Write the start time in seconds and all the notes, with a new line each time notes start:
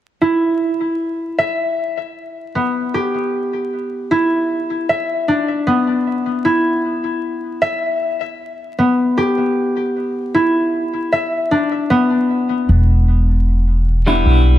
0.21 E4
1.38 E5
2.55 B3
2.94 G4
4.11 E4
4.89 E5
5.28 D4
5.67 B3
6.45 E4
7.62 E5
8.78 B3
9.18 G4
10.34 E4
11.12 E5
11.51 D4
11.90 B3
12.69 E1
14.06 G3 B3 D4 E4
14.25 B1